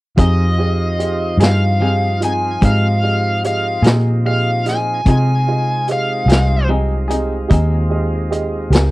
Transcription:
0.16 1.36 F2 medium
0.16 5.01 F3 medium
0.16 0.42 F3 medium
0.16 5.02 C4 medium
0.16 0.43 C4 medium
0.16 5.01 D#4 medium
0.16 0.42 D#4 medium
0.16 5.01 F4 medium
0.16 0.48 G4 medium
0.16 0.48 G#4 soft
0.16 0.43 G#4 medium
0.16 0.48 D#5 medium
0.16 1.37 D#5 medium
0.16 kick medium
0.16 closed hi-hat medium
0.58 0.89 G4 soft
0.58 0.89 G#4 soft
0.58 0.89 D#5 medium
0.99 1.29 G4 soft
0.99 1.30 G#4 soft
0.99 1.30 D#5 soft
0.99 closed hi-hat medium
1.37 2.57 G2 medium
1.37 1.64 D#4 soft
1.37 1.70 G4 soft
1.37 1.64 G#4 soft
1.37 1.70 G#4 soft
1.37 closed hi-hat medium
1.42 1.65 C4 soft
1.42 1.71 D#5 medium
1.42 2.21 F5 medium
1.42 snare medium
1.80 2.05 F3 soft
1.80 2.05 C4 medium
1.80 2.06 D#4 soft
1.80 2.11 G4 soft
1.80 2.12 G#4 soft
1.80 2.06 G#4 medium
1.80 2.12 F5 medium
2.20 2.51 F4 soft
2.20 2.52 G#4 soft
2.20 2.46 G#4 soft
2.20 2.52 D#5 soft
2.20 closed hi-hat medium
2.24 2.47 C4 soft
2.24 2.47 D#4 soft
2.24 2.62 G#5 medium
2.61 3.80 G#2 medium
2.61 2.86 F3 medium
2.61 2.86 C4 medium
2.61 2.87 D#4 medium
2.61 2.92 G4 soft
2.61 2.93 G#4 soft
2.61 2.87 G#4 medium
2.61 2.93 D#5 medium
2.61 3.42 F5 medium
2.61 kick loud
2.61 closed hi-hat medium
3.03 3.33 G4 soft
3.03 3.33 G#4 soft
3.03 3.34 D#5 medium
3.44 3.74 G4 soft
3.44 3.74 G#4 soft
3.44 3.74 D#5 medium
3.44 3.84 F5 medium
3.44 closed hi-hat medium
3.82 5.01 A#2 medium
3.82 4.09 C4 soft
3.82 4.08 D#4 soft
3.82 4.15 G4 soft
3.82 4.08 G#4 medium
3.82 4.15 G#4 soft
3.82 closed hi-hat medium
3.86 4.16 D#5 medium
3.86 snare medium
4.25 4.55 G4 medium
4.25 4.56 G#4 soft
4.25 4.56 D#5 medium
4.25 4.65 F5 medium
4.66 4.96 F4 soft
4.66 4.96 G#4 soft
4.66 4.96 D#5 soft
4.66 5.07 G#5 medium
4.66 snare soft
4.66 closed hi-hat medium
5.05 6.24 C3 medium
5.05 5.31 F3 medium
5.05 8.91 G#3 medium
5.05 8.91 C4 medium
5.05 5.31 C4 medium
5.05 8.91 D#4 medium
5.05 5.31 D#4 medium
5.05 8.91 F4 medium
5.05 5.37 F4 soft
5.05 5.37 G#4 medium
5.05 5.31 G#4 medium
5.05 5.38 D#5 medium
5.05 kick medium
5.05 closed hi-hat medium
5.10 5.87 G#5 medium
5.47 5.77 F4 soft
5.47 5.78 G#4 soft
5.47 5.78 D#5 medium
5.88 6.18 G4 soft
5.88 6.18 G#4 soft
5.88 6.19 D#5 medium
5.88 closed hi-hat soft
5.92 6.68 F5 medium
6.26 7.45 C2 medium
6.26 6.53 D#4 soft
6.26 6.58 G4 soft
6.26 6.52 G#4 soft
6.26 6.59 G#4 soft
6.26 6.59 D#5 medium
6.26 closed hi-hat medium
6.31 6.53 C4 soft
6.31 snare medium
6.68 6.92 F3 soft
6.68 6.93 C4 medium
6.68 6.93 D#4 medium
6.68 6.99 G4 soft
6.68 6.99 G#4 soft
6.68 6.94 G#4 medium
6.68 7.00 D#5 medium
7.08 7.34 C4 soft
7.08 7.34 D#4 soft
7.08 7.39 G4 medium
7.08 7.33 G#4 medium
7.08 7.40 G#4 soft
7.08 7.40 D#5 medium
7.08 closed hi-hat medium
7.48 8.68 D#2 medium
7.48 7.74 F3 medium
7.48 7.75 C4 medium
7.48 7.75 D#4 medium
7.48 7.79 G4 medium
7.48 7.80 G#4 medium
7.48 7.75 G#4 medium
7.48 7.80 D#5 medium
7.48 kick loud
7.48 closed hi-hat medium
7.90 8.20 G4 medium
7.90 8.21 G#4 soft
7.90 8.21 D#5 medium
8.31 8.61 G4 medium
8.31 8.61 G#4 soft
8.31 8.62 D#5 medium
8.31 closed hi-hat medium
8.70 8.91 C#2 medium
8.70 8.91 G4 medium
8.70 8.91 G#4 medium
8.70 8.91 A#4 medium
8.70 closed hi-hat medium
8.75 8.91 C4 soft
8.75 8.91 D#4 medium
8.75 snare medium

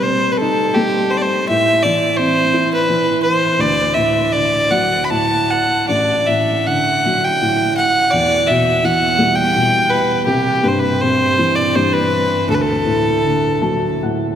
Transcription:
0.00 1.45 C3 medium
0.00 0.74 G3 soft
0.00 0.34 C5 medium
0.05 1.45 C4 soft
0.32 0.40 B4 medium
0.38 1.45 D#4 soft
0.38 0.76 A4 medium
0.74 1.46 G3 soft
0.74 1.12 G4 medium
1.10 1.19 C5 medium
1.17 1.24 D5 medium
1.23 1.47 C5 medium
1.49 3.56 A2 medium
1.49 1.85 E5 medium
1.83 2.88 E3 medium
1.83 2.19 D5 medium
2.18 3.55 C4 soft
2.18 2.71 C5 medium
2.53 3.56 E4 medium
2.74 3.22 B4 medium
2.89 3.57 E3 soft
3.23 3.63 C5 medium
3.58 5.84 D2 medium
3.58 3.96 D5 medium
3.95 5.09 A2 soft
3.95 4.34 E5 medium
4.33 5.85 D3 soft
4.33 4.73 D5 medium
4.71 6.23 F#3 soft
4.71 5.06 F#5 medium
5.05 5.12 B5 medium
5.10 6.26 A2 soft
5.10 5.52 A5 medium
5.51 5.88 F#5 medium
5.89 8.10 A1 soft
5.89 6.28 D5 medium
6.27 7.40 A2 soft
6.27 6.68 E5 medium
6.67 8.10 D3 soft
6.67 7.26 F#5 medium
7.05 8.11 F#3 soft
7.24 7.77 G5 medium
7.41 8.11 A2 soft
7.77 8.13 F#5 medium
8.11 10.23 E2 soft
8.11 8.49 D5 medium
8.47 9.54 B2 medium
8.47 8.87 E5 medium
8.84 10.23 E3 soft
8.84 9.37 F#5 medium
9.18 10.23 G3 soft
9.36 9.91 G5 medium
9.56 10.26 B2 soft
9.90 10.25 B4 medium
10.26 12.43 C2 medium
10.26 10.66 G4 medium
10.63 11.74 G2 medium
10.63 10.70 B4 medium
10.68 10.81 C5 medium
10.79 11.03 B4 medium
11.01 12.44 C3 soft
11.01 11.57 C5 medium
11.38 12.44 E3 medium
11.56 11.77 D5 medium
11.75 12.46 G2 soft
11.75 11.95 C5 medium
11.94 12.48 B4 medium
12.48 14.35 D2 medium
12.48 12.56 A4 medium
12.55 12.63 B4 medium
12.61 14.02 A4 medium
12.85 14.01 A2 medium
13.23 14.35 D3 soft
13.62 14.35 F#3 soft
13.62 13.99 A5 medium
14.03 14.35 A2 soft
14.03 14.35 F#5 medium

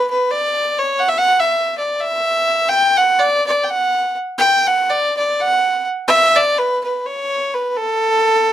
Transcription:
0.11 0.32 B4 medium
0.31 0.80 D5 medium
0.78 1.01 C#5 medium
0.99 1.10 F#5 loud
1.08 1.19 E5 loud
1.18 1.41 F#5 loud
1.40 1.77 E5 loud
1.78 2.01 D5 medium
1.99 2.70 E5 loud
2.69 2.98 G5 loud
2.96 3.20 F#5 loud
3.19 3.46 D5 loud
3.47 3.64 D5 medium
3.63 3.71 G5 medium
3.70 4.17 F#5 medium
4.38 4.68 G5 loud
4.66 4.91 F#5 loud
4.90 5.17 D5 loud
5.17 5.41 D5 medium
5.40 5.86 F#5 medium
6.08 6.37 E5 loud
6.36 6.59 D5 loud
6.58 6.83 B4 loud
6.84 7.07 B4 medium
7.06 7.55 C#5 medium
7.54 7.77 B4 medium
7.76 8.53 A4 loud

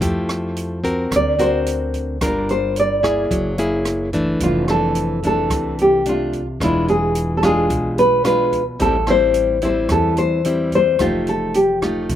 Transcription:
0.01 1.07 F2 medium
0.01 1.08 F3 medium
0.01 0.79 A3 medium
0.01 0.79 E4 medium
0.01 0.79 G4 medium
0.01 kick medium
0.01 closed hi-hat soft
0.29 cross-stick medium
0.29 closed hi-hat soft
0.56 closed hi-hat soft
0.84 1.34 C4 medium
0.84 1.34 F#4 medium
0.84 1.35 A#4 medium
0.84 kick soft
0.84 closed hi-hat soft
1.11 2.17 D2 medium
1.11 2.18 D3 medium
1.11 kick medium
1.11 cross-stick medium
1.11 closed hi-hat soft
1.16 1.40 D5 medium
1.39 2.17 C4 medium
1.39 2.17 F#4 medium
1.39 2.17 A#4 medium
1.39 2.18 C5 medium
1.39 closed hi-hat soft
1.66 closed hi-hat soft
1.94 kick soft
1.94 closed hi-hat soft
2.21 3.27 G1 medium
2.21 3.28 G3 medium
2.21 2.99 D4 medium
2.21 2.99 F4 medium
2.21 3.00 A#4 medium
2.21 kick medium
2.21 cross-stick medium
2.21 closed hi-hat soft
2.26 2.50 A#4 medium
2.49 2.76 C5 medium
2.49 closed hi-hat soft
2.76 3.29 D5 medium
2.76 closed hi-hat soft
3.03 3.54 A#3 medium
3.03 3.54 E4 medium
3.03 3.54 G#4 medium
3.03 kick soft
3.03 cross-stick medium
3.03 closed hi-hat soft
3.31 4.37 F#1 medium
3.31 4.13 F#3 medium
3.31 kick medium
3.31 closed hi-hat soft
3.58 4.09 A#3 medium
3.58 4.09 E4 medium
3.58 4.09 G#4 medium
3.58 closed hi-hat soft
3.85 cross-stick medium
3.85 closed hi-hat soft
4.13 4.68 E3 medium
4.13 4.68 A3 medium
4.13 4.68 D4 medium
4.13 kick soft
4.13 closed hi-hat soft
4.40 5.47 F1 medium
4.40 5.48 F2 medium
4.40 4.70 F4 medium
4.40 kick medium
4.40 closed hi-hat soft
4.68 5.19 E3 medium
4.68 5.19 A3 medium
4.68 5.19 D4 medium
4.68 5.26 A4 medium
4.68 cross-stick medium
4.68 closed hi-hat soft
4.95 closed hi-hat soft
5.23 6.01 E3 medium
5.23 6.02 A3 medium
5.23 6.02 D4 medium
5.23 5.76 A4 medium
5.23 kick soft
5.23 closed hi-hat soft
5.50 6.56 C2 medium
5.50 6.58 C3 soft
5.50 kick medium
5.50 cross-stick medium
5.50 closed hi-hat soft
5.79 6.08 G4 medium
5.79 closed hi-hat soft
6.06 6.41 A3 medium
6.06 6.41 D4 medium
6.06 6.46 F4 medium
6.06 closed hi-hat soft
6.33 kick soft
6.33 closed hi-hat soft
6.60 7.67 E1 medium
6.60 7.68 E3 medium
6.60 7.38 G#3 medium
6.60 7.39 D4 medium
6.60 6.89 E4 medium
6.60 7.39 F4 medium
6.60 kick medium
6.60 cross-stick medium
6.60 closed hi-hat soft
6.88 7.37 G#4 medium
6.88 closed hi-hat soft
7.15 closed hi-hat soft
7.37 7.43 A4 medium
7.43 8.21 G#3 medium
7.43 8.21 D4 medium
7.43 8.21 F4 medium
7.43 7.99 G#4 medium
7.43 kick soft
7.43 cross-stick medium
7.43 closed hi-hat soft
7.70 8.76 B1 medium
7.70 8.77 B2 medium
7.70 kick medium
7.70 closed hi-hat soft
7.98 8.25 B4 medium
7.98 closed hi-hat soft
8.24 8.62 G#3 soft
8.24 8.62 D4 medium
8.24 8.62 F4 medium
8.24 8.64 B4 loud
8.24 cross-stick medium
8.24 closed hi-hat soft
8.52 kick soft
8.52 closed hi-hat soft
8.79 9.86 A1 medium
8.79 9.87 A2 medium
8.79 8.96 G3 medium
8.79 8.96 C4 medium
8.79 8.96 E4 medium
8.79 9.09 A4 loud
8.79 kick medium
8.79 closed hi-hat soft
9.07 9.58 G3 medium
9.07 9.58 C4 medium
9.07 9.58 E4 medium
9.07 9.64 C5 loud
9.07 cross-stick medium
9.07 closed hi-hat soft
9.34 closed hi-hat soft
9.62 10.40 G3 medium
9.62 10.40 C4 medium
9.62 10.41 E4 medium
9.62 9.89 C5 medium
9.62 kick soft
9.62 closed hi-hat soft
9.89 10.96 E2 medium
9.89 10.97 E3 medium
9.89 10.16 A4 medium
9.89 kick medium
9.89 cross-stick medium
9.89 closed hi-hat soft
10.17 10.69 C5 loud
10.17 closed hi-hat soft
10.45 10.96 G3 medium
10.45 10.96 C4 medium
10.45 10.96 E4 medium
10.45 closed hi-hat soft
10.72 11.02 C5 loud
10.72 kick soft
10.72 closed hi-hat soft
10.99 12.06 F1 medium
10.99 12.07 F3 soft
10.99 11.55 A3 soft
10.99 11.55 D#4 medium
10.99 11.29 F4 medium
10.99 11.55 G4 medium
10.99 kick medium
10.99 cross-stick medium
10.99 closed hi-hat soft
11.27 11.56 A4 medium
11.27 closed hi-hat soft
11.54 11.82 G4 medium
11.54 closed hi-hat soft
11.82 12.15 A3 medium
11.82 12.15 D#4 medium
11.82 12.15 F4 medium
11.82 12.15 G4 medium
11.82 kick soft
11.82 cross-stick medium
11.82 closed hi-hat soft
12.09 12.15 C2 medium
12.09 12.15 C3 soft
12.09 kick medium
12.09 closed hi-hat soft

